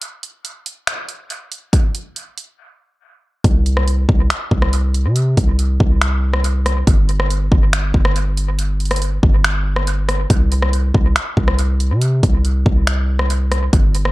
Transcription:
0.02 closed hi-hat
0.23 closed hi-hat
0.45 closed hi-hat
0.66 closed hi-hat
0.87 finger snap, closed hi-hat
1.09 closed hi-hat
1.30 closed hi-hat
1.52 closed hi-hat
1.73 kick, closed hi-hat
1.95 closed hi-hat
2.16 closed hi-hat
2.38 closed hi-hat
3.44 C2, kick, closed hi-hat
3.66 closed hi-hat
3.77 cross-stick
3.88 closed hi-hat
4.09 C2, kick
4.30 finger snap, closed hi-hat
4.51 C2, kick
4.62 cross-stick
4.73 closed hi-hat
4.94 closed hi-hat
5.05 C3
5.16 closed hi-hat
5.37 C2, kick, closed hi-hat
5.59 closed hi-hat
5.80 C2, kick
6.02 finger snap, closed hi-hat
6.33 cross-stick
6.44 closed hi-hat
6.66 cross-stick, closed hi-hat
6.87 G1, kick, closed hi-hat
7.09 closed hi-hat
7.20 cross-stick
7.30 closed hi-hat
7.52 G1, kick
7.73 finger snap, closed hi-hat
7.94 G1, kick
8.05 cross-stick
8.16 closed hi-hat
8.37 closed hi-hat
8.59 closed hi-hat
8.80 closed hi-hat
8.85 closed hi-hat
8.91 cross-stick, closed hi-hat
8.96 closed hi-hat
9.02 closed hi-hat
9.23 G1, kick
9.44 finger snap, closed hi-hat
9.76 cross-stick
9.87 closed hi-hat
10.09 cross-stick, closed hi-hat
10.30 C2, kick, closed hi-hat
10.52 closed hi-hat
10.62 cross-stick
10.73 closed hi-hat
10.94 C2, kick
11.16 finger snap, closed hi-hat
11.37 C2, kick
11.48 cross-stick
11.59 closed hi-hat
11.80 closed hi-hat
11.91 C3
12.02 closed hi-hat
12.23 C2, kick, closed hi-hat
12.45 closed hi-hat
12.66 C2, kick
12.87 finger snap, closed hi-hat
13.19 cross-stick
13.30 closed hi-hat
13.52 cross-stick, closed hi-hat
13.73 G1, kick, closed hi-hat
13.95 closed hi-hat
14.05 cross-stick

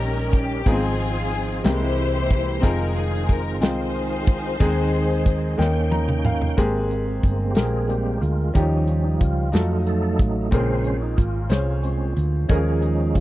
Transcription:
Already playing: A#1 D#3 G3 C#4 D#4 G4 A#4
0.01 closed hi-hat
0.33 G4, kick, closed hi-hat
0.65 G#1 G#2 F3 B3 C4 D#4 F4 G#4, kick, closed hi-hat
0.72 C4
0.99 closed hi-hat
1.33 closed hi-hat
1.64 C2 C3 E3 G#3 A#3 C4 E4 G4, snare, closed hi-hat
1.68 C5
1.72 G#3
1.98 closed hi-hat
2.31 kick, closed hi-hat
2.62 F1 D#3 G#3 C4 D#4 F4 G#4 A#4, kick, closed hi-hat
2.96 G#4, closed hi-hat
3.29 A#4, kick, closed hi-hat
3.61 C2 C4 D#4 F4 G#4 C5 G5, snare, closed hi-hat
3.96 closed hi-hat
4.27 kick, closed hi-hat
4.59 D#2 D#3 G#3 C4 D#4 G#4, kick, closed hi-hat
4.93 closed hi-hat
5.26 kick, closed hi-hat
5.58 D#2 D#3 A#3 C#4 D#4 F4 G5, snare
5.65 G5
5.91 A#5, high tom
6.09 mid tom
6.25 F5, mid tom
6.41 floor tom
6.56 G#1 G#3 A#3 C4 G4 G#4 A#4, kick, closed hi-hat
6.91 closed hi-hat
7.23 G1, kick, closed hi-hat
7.51 G4
7.55 A#1 A#3 C4 G4 G#4 A#4, snare, closed hi-hat
7.87 G3 A#3 C4 G4, closed hi-hat
8.14 G4
8.21 D2 F4, closed hi-hat
8.54 D#2 D#3 F3 G3 C#4 D#4 F4 G4 F5, kick, closed hi-hat
8.88 C#4, closed hi-hat
9.04 D#4
9.20 C#2 F4, kick, closed hi-hat
9.52 F2 F#3 A3 D#4 F4 F#4 A4, snare, closed hi-hat
9.87 A4, closed hi-hat
10.19 A1 A3, kick, closed hi-hat
10.51 A#1 A#2 C#3 G#3 A#3 C4 C#4 F4 G#4 A#4 C5, kick, closed hi-hat
10.84 C#4, closed hi-hat
11.02 D#4
11.17 G#1 F4, kick, closed hi-hat
11.50 C2 C#4 G#4 C5 C#5, snare, closed hi-hat
11.83 G#3 C4 C#4, closed hi-hat
12.16 D2, closed hi-hat
12.48 D#2 D#3 F3 G#3 C#4 D#4 G#4 A#4, kick, closed hi-hat
12.81 D#4, closed hi-hat
13.15 C#2 F4, kick, closed hi-hat

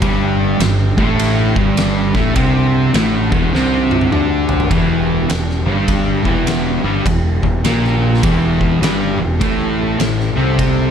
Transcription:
Already playing: G5
0.01 G1 G2 G3 D4 G4, kick, ride bell
0.59 G1 G2, snare, ride bell
0.97 A1 A2 A3, kick
1.20 ride bell
1.56 G1 G2 G3, kick
1.77 snare, ride bell
2.14 A1 A2 A3, kick, snare
2.35 C2 C3 C4 F#5, kick, ride bell
2.94 A1 A2 A3, snare, ride bell
3.31 E1 E2 E3, kick
3.53 C2 C3 C4, snare
3.91 high tom
4.01 high tom
4.12 D2 D3 D4, mid tom
4.49 floor tom
4.60 floor tom
4.70 E1 E2 E3 G4 G5, kick, ride bell
5.29 E1 E2, snare, ride bell
5.50 snare
5.66 G1 G2 G3
5.88 kick, ride bell
6.25 E1 E2 E3, kick
6.47 snare, ride bell
6.84 G1 G2 G3
7.06 E1 E2, kick, ride bell
7.43 E1 E2, kick
7.64 A#1 A#2 A#3, snare, ride bell
7.85 snare
8.14 snare
8.23 E1 E2 E3, kick, ride bell
8.61 kick
8.81 G1 G2 G3, snare, ride bell
9.19 E1 E2
9.40 A1 A2 A3 A4 A5, kick, ride bell
10.00 A1 A2, snare, ride bell
10.20 snare
10.36 C2 C3 C4
10.59 kick, ride bell

